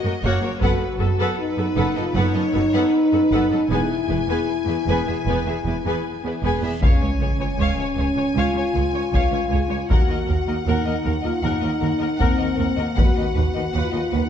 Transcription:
Already playing: F#4 D#5
0.03 F#2 A#3 F#4 A#4
0.22 F#1 F#2 A#3 F#4 C#5 F#5
0.42 F#2 A#3 F#4 A#4 C#5
0.60 F#1 F#2 B3 F#4 A4 B4 F#5, taiko
0.99 F#1 F#2 B3 F#4 A4 B4
1.18 F#2 B3 A4 B4 F#5
1.37 D#4 B4
1.57 F#2 B3 F#4 A4 B4
1.76 F#1 F#2 B3 A4 B4 F#5
1.95 F#2 B3 F4 A4 D#5
2.14 F#1 F#2 B3 D#4 A4 B4 C#5 F#5
2.34 F#2 B3 A4 D#5
2.53 F#1 F#2 B3 F#4 A4 B4
2.73 F#2 B3 A4 B4 F#5
2.92 B4
3.12 F#2 B3 F#4 A4 B4
3.32 F#1 F#2 B3 A4 B4 F#5
3.50 F#2 B3 A4 D#5
3.69 E1 E2 B3 E4 G#4 B4 G#5, reverse cymbal
4.09 E1 E2 B3 E4 G#4 B4
4.28 E2 B3 G#4 B4 G#5
4.66 E2 B3 E4 G#4 B4
4.87 E1 E2 B3 G#4 B4 G#5
5.07 E2 B3 G#4 E5
5.26 E1 E2 B3 G#4 B4 G#5
5.46 E2 B3 G#4 E5
5.65 E1 E2 B3 E4 G#4 B4
5.85 E2 B3 G#4 B4 G#5
6.24 E2 B3 E4 G#4 B4
6.43 E1 E2 B3 G#4 B4 G#5
6.62 E2 B3 G#4 E5
6.81 C#2 C#4 C#5 F5 G#5, taiko, sub drop
7.02 C#2 C#5
7.20 C#2 G#4 C#5
7.39 C#2 C#5
7.58 C#2 C#5 F5
7.76 C#2 C#5
7.80 C#5
7.96 C#2 G#4 C#5
8.15 C#2 C#5
8.35 C#2 F4 C#5 F5
8.54 C#2 C#5
8.73 C#2 G#4 C#5
8.93 C#2 C#5
9.12 C#2 C#5 F5, taiko
9.31 C#2 C#5
9.49 C#2 G#4 C#5
9.69 C#2 C#5
9.89 D#2 F#4 A#4 F#5, taiko
10.08 D#2 A#4 D#5
10.27 D#2 A#4
10.47 D#2 A#4 D#5
10.66 D#2 D#4 A#4 F#5
10.85 D#2 A#4 D#5
11.04 D#2 A#4
11.22 D#2 F4 A#4 D#5
11.41 D#2 D#4 A#4 F#5
11.61 D#2 A#4 D#5
11.79 D#2 A#4
11.98 D#2 A#4 D#5
12.17 D#2 C4 A#4 F#5
12.21 D#2, taiko
12.37 D#2 A#4 D#5
12.54 D#2 A#4
12.59 D#2 A#4
12.76 D#2 A#4 D#5
12.82 A#3
12.96 D#2 B4 F#5, taiko
13.00 F#4
13.15 D#2 B4 D#5
13.34 D#2 B4
13.54 D#2 B4 D#5
13.73 D#2 F4 B4 F#5
13.92 D#2 B4 D#5
14.12 D#2 D#4 B4

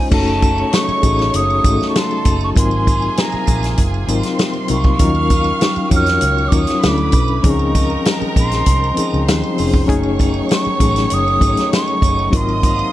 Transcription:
Already playing: G#3 C#4 D#4 F4 C5
0.10 F#1 C#3 A3 C#4 D#4 F#4 A4 C#5 A5 C#6, kick, crash, muted triangle
0.28 muted triangle
0.42 kick, closed hi-hat, triangle
0.58 muted triangle
0.73 C#6, snare, closed hi-hat, muted triangle
0.88 muted fingered electric bass stroke, muted triangle
1.02 A1 C#4 D#4 F#4 G#4 A4, kick, closed hi-hat, triangle
1.19 snare, muted triangle
1.34 F#1 D#6, closed hi-hat, muted triangle
1.50 muted triangle
1.63 G#1 A3 C#4 D#4 F#4 G#4, kick, closed hi-hat, triangle
1.73 A4
1.81 snare, muted triangle
1.90 C#6
1.94 A4 A5 C6, snare, closed hi-hat, muted triangle
2.11 muted triangle
2.25 F#1, kick, closed hi-hat, triangle
2.41 C#6, muted triangle
2.54 G#1 C3 F#3 A#3 C4 D#4 F4 G#4 A#4 G#5 C6, kick, closed hi-hat, muted triangle
2.71 muted triangle
2.87 kick, closed hi-hat, triangle
3.02 muted triangle
3.17 A#5, snare, closed hi-hat, muted triangle
3.32 muted fingered electric bass stroke, muted triangle
3.47 A#1, kick, closed hi-hat, triangle
3.63 snare, closed hi-hat, muted triangle
3.77 F#1, kick, closed hi-hat, muted triangle
3.94 muted triangle
4.07 G#1 F#3 C4 D#4 F4 A#4 C6, closed hi-hat, triangle
4.23 snare, closed hi-hat, muted triangle
4.39 snare, closed hi-hat, muted triangle
4.54 muted triangle
4.67 C2 F#3 C4 D#4 F4, closed hi-hat, triangle
4.71 A#4 C#6
4.84 kick, muted triangle
4.98 D#2 D#3 F3 C#4 D#4 F4 A#4 F5 F6, kick, closed hi-hat, muted triangle
5.04 F#3
5.15 muted triangle
5.30 kick, closed hi-hat, triangle
5.44 muted triangle
5.61 snare, closed hi-hat, muted triangle
5.76 muted fingered electric bass stroke, muted triangle
5.89 F2 C#4 D#4 F4 F#4 A#4 C#5 C#6, kick, closed hi-hat, triangle
5.96 F6
6.06 snare, closed hi-hat, muted triangle
6.21 C#2, closed hi-hat, muted triangle
6.38 muted triangle
6.48 D#2 F#3 C#4 D#4 D6, kick, closed hi-hat
6.53 F4 A#4, triangle
6.58 D#6
6.67 snare, closed hi-hat, muted triangle
6.81 D2 D3 F#3 C#4 D4 E4 A4 B4 B5, snare, closed hi-hat, muted triangle
6.85 E4 D6
6.98 muted triangle
7.12 B1, kick, closed hi-hat, triangle
7.28 muted triangle
7.42 C#2 D#3 F3 G#3 C4 C#4 D#4 G#4 A#4 A#5, kick, closed hi-hat, muted triangle
7.50 C#6
7.59 muted triangle
7.75 kick, closed hi-hat, triangle
7.90 muted triangle
8.05 snare, closed hi-hat, muted triangle
8.22 muted fingered electric bass stroke, muted triangle
8.36 A#1 C6, kick, closed hi-hat, triangle
8.52 snare, closed hi-hat, muted triangle
8.66 C2, kick, closed hi-hat, muted triangle
8.84 muted triangle
8.95 F3 C4 C#4 D#4 G#4, muted fingered electric bass stroke, closed hi-hat
8.99 triangle
9.14 C#2, muted triangle
9.27 D#2 C5 C6, snare, closed hi-hat, muted triangle
9.44 muted triangle
9.56 F1 F3 C4 C#4 D#4 G#4, open hi-hat, triangle
9.74 kick, muted triangle
9.86 F#1 F#3 A3 C#4 D#4 G#4 C#5 C#6, kick, closed hi-hat, muted triangle
10.03 muted triangle
10.19 kick, closed hi-hat, triangle
10.34 muted triangle
10.49 snare, closed hi-hat, muted triangle
10.53 C#6
10.65 muted fingered electric bass stroke, muted triangle
10.79 A1 F#3 A3 C#4 D#4 G#4, kick, closed hi-hat, triangle
10.96 snare, closed hi-hat, muted triangle
11.10 F#1 D#6, closed hi-hat, muted triangle
11.28 muted triangle
11.39 G#1 F#3 A3 C#4 D#4 G#4, kick, closed hi-hat, triangle
11.57 snare, closed hi-hat, muted triangle
11.73 C#6, snare, closed hi-hat, muted triangle
11.88 muted triangle
12.02 F#1, kick, closed hi-hat, triangle
12.19 muted triangle
12.30 G#1 C3 F#3 A#3 C4 D#4 F4 A#4 D#5 D#6, kick, closed hi-hat, muted triangle
12.37 C6
12.49 muted triangle
12.63 kick, closed hi-hat, triangle
12.79 muted triangle

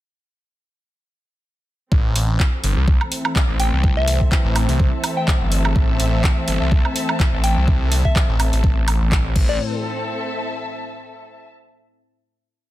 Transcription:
1.92 A1 E3 A3 C4, kick
2.16 A1, open hi-hat
2.40 kick, clap
2.53 A4
2.64 G1, open hi-hat
2.77 C2
2.88 kick
3.01 high woodblock
3.12 E5, open hi-hat
3.25 high woodblock
3.36 kick, clap
3.49 A1
3.59 G5 A5, open hi-hat
3.73 C2
3.84 kick
3.97 E5
4.08 open hi-hat
4.21 kick
4.32 kick, clap
4.45 A1
4.56 open hi-hat, high woodblock
4.69 C2, open hi-hat
4.80 kick
5.04 open hi-hat, high woodblock
5.17 G5
5.28 kick, clap
5.41 G1
5.52 open hi-hat
5.65 high woodblock
5.76 A1, kick
6.00 A1, open hi-hat
6.24 kick, clap
6.48 G1, open hi-hat
6.61 C2
6.72 kick
6.85 high woodblock
6.96 open hi-hat
7.09 high woodblock
7.20 kick, clap
7.33 A1
7.44 G5, open hi-hat
7.57 C2
7.68 kick
7.92 open hi-hat
8.05 E5, kick
8.16 kick, clap
8.29 A1
8.40 open hi-hat, high woodblock
8.53 A1, open hi-hat
8.64 kick
8.88 open hi-hat, high woodblock
9.01 A1
9.12 kick, clap
9.36 A1 A2 A3 C4 E4, kick, crash
9.44 A4
9.49 D5
9.75 E5
9.81 A5

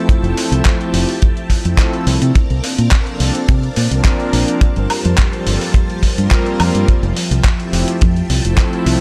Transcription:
Already playing: F3 A3 C4 E4 A4 E5 G5 A5
0.09 kick, closed hi-hat
0.23 F1, closed hi-hat
0.37 open hi-hat
0.52 C2, closed hi-hat
0.65 kick, clap, closed hi-hat
0.80 F3 A3 C4 E4 G4, closed hi-hat
0.93 F1 F3 A3 C4 E4 G4, open hi-hat
1.09 open hi-hat
1.22 kick, closed hi-hat
1.37 closed hi-hat
1.50 kick, open hi-hat
1.65 F2 F3 A3 C4 E4 A4, closed hi-hat
1.77 kick, clap, closed hi-hat
1.93 closed hi-hat
2.07 C2 C4 A#4 D5 F5 A5, open hi-hat
2.22 C3, closed hi-hat
2.35 kick, closed hi-hat
2.50 C2, closed hi-hat
2.64 open hi-hat
2.78 A#2, closed hi-hat
2.91 kick, clap, closed hi-hat
3.07 F3 A#3 C4 D4 A4, closed hi-hat
3.20 C2 F3 A#3 C4 D4 A4, open hi-hat
3.35 closed hi-hat
3.48 C3, kick, closed hi-hat
3.63 closed hi-hat
3.76 A#2, open hi-hat
3.91 C2 F3 A#3 C4 D4 A#4, closed hi-hat
4.05 kick, clap, closed hi-hat
4.20 closed hi-hat
4.33 A#1, open hi-hat
4.48 closed hi-hat
4.61 F3 G3 C5 A5, muted fingered electric bass stroke, kick, closed hi-hat
4.76 G1, closed hi-hat
4.90 open hi-hat, high woodblock
5.05 F2, closed hi-hat
5.18 kick, clap, closed hi-hat
5.33 G3 A#3 C4 F4 A4, closed hi-hat
5.46 G1 G3 A#3 C4 F4 A4, open hi-hat
5.61 open hi-hat
5.74 kick, closed hi-hat
5.90 closed hi-hat
6.03 kick, open hi-hat
6.17 G2 G3 A#3 C4 F4 A#4, closed hi-hat
6.31 kick, clap, closed hi-hat
6.46 closed hi-hat
6.60 F2, open hi-hat, high woodblock
6.75 G2, closed hi-hat
6.88 E5 G5 A5, kick, closed hi-hat
7.03 F1, closed hi-hat
7.17 open hi-hat
7.31 C2, closed hi-hat
7.44 kick, clap, closed hi-hat
7.59 F3 A3 C4 E4 G4, closed hi-hat
7.72 F1 F3 A3 C4 E4 G4, open hi-hat
7.88 closed hi-hat
8.01 F2, kick, closed hi-hat
8.16 closed hi-hat
8.30 C2, open hi-hat
8.43 F1 F3 A3 C4 E4 A4, closed hi-hat
8.57 kick, clap, closed hi-hat
8.73 closed hi-hat
8.86 C2, open hi-hat

